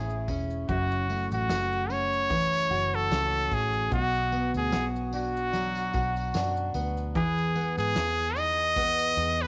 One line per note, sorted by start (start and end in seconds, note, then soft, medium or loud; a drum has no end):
0.00 0.25 A1 medium
0.00 0.95 A3 medium
0.00 0.29 C#4 medium
0.00 1.52 E4 medium
0.00 0.25 G#4 medium
0.00 0.69 G#4 medium
0.09 shaker medium
0.28 0.65 E1 medium
0.28 1.09 C#4 medium
0.28 kick medium
0.28 tambourine soft
0.50 shaker soft
0.69 1.28 F#1 loud
0.69 3.92 F#2 medium
0.69 1.28 F#4 medium
0.69 1.49 F#4 medium
0.69 kick loud
0.69 shaker medium
0.91 shaker medium
1.10 3.51 A3 medium
1.10 tambourine soft
1.31 1.48 A1 medium
1.31 1.93 F#4 medium
1.31 tambourine soft
1.31 shaker medium
1.49 2.67 F#1 loud
1.49 2.70 F#4 medium
1.49 snare loud
1.49 tambourine medium
1.49 shaker medium
1.73 shaker medium
1.90 3.10 C#4 medium
1.90 2.96 C#5 loud
1.90 tambourine medium
2.13 shaker medium
2.30 4.01 E3 medium
2.30 kick loud
2.30 tambourine medium
2.30 shaker medium
2.53 tambourine medium
2.53 shaker medium
2.70 3.08 F#1 loud
2.70 3.91 F#4 medium
2.70 tambourine soft
2.70 shaker soft
2.93 3.56 A4 loud
2.93 shaker soft
3.11 3.48 C#2 medium
3.11 4.01 C#4 medium
3.11 snare loud
3.11 tambourine medium
3.11 shaker medium
3.33 shaker medium
3.52 3.89 A1 medium
3.52 4.01 A3 medium
3.52 3.93 G#4 medium
3.52 kick medium
3.52 tambourine soft
3.52 shaker soft
3.73 shaker soft
3.91 4.51 B1 loud
3.91 7.15 B2 medium
3.91 4.72 F#4 medium
3.91 4.52 F#4 medium
3.91 kick loud
3.91 shaker medium
4.14 shaker soft
4.32 6.74 B3 medium
4.32 tambourine soft
4.54 4.71 D2 loud
4.54 4.87 G#4 medium
4.54 tambourine soft
4.54 shaker medium
4.72 5.90 B1 medium
4.72 5.92 F#4 medium
4.72 snare loud
4.72 tambourine medium
4.72 shaker medium
4.96 shaker medium
5.13 6.33 D4 medium
5.13 6.72 F#4 medium
5.13 tambourine medium
5.37 shaker medium
5.53 7.15 F#3 medium
5.53 tambourine medium
5.53 shaker medium
5.75 tambourine medium
5.75 shaker medium
5.93 6.32 B1 medium
5.93 7.15 F#4 medium
5.93 kick loud
5.93 tambourine soft
5.93 shaker soft
6.16 tambourine soft
6.16 shaker soft
6.34 6.72 F#2 medium
6.34 7.24 D4 medium
6.34 snare loud
6.34 tambourine medium
6.34 shaker medium
6.57 shaker medium
6.74 7.15 D2 loud
6.74 7.55 B3 medium
6.74 tambourine medium
6.74 shaker soft
6.97 shaker soft
7.15 7.74 E2 loud
7.15 9.47 E3 medium
7.15 7.96 G#4 medium
7.15 7.75 G#4 medium
7.15 kick loud
7.15 shaker medium
7.38 tambourine soft
7.38 shaker medium
7.55 8.76 B3 medium
7.55 tambourine medium
7.77 7.95 G#2 medium
7.77 8.39 G#4 loud
7.77 tambourine soft
7.77 shaker medium
7.96 9.14 E2 loud
7.96 9.17 G#4 medium
7.96 snare loud
7.96 tambourine medium
7.96 shaker medium
8.19 shaker medium
8.36 9.47 D#4 medium
8.36 9.43 D#5 loud
8.36 tambourine soft
8.36 shaker medium
8.59 shaker medium
8.76 9.47 B3 medium
8.76 kick medium
8.76 tambourine medium
8.76 shaker medium
8.99 tambourine medium
8.99 shaker medium
9.17 9.47 E2 loud
9.17 9.47 G#4 medium
9.17 tambourine soft
9.39 9.47 B4 loud
9.39 shaker soft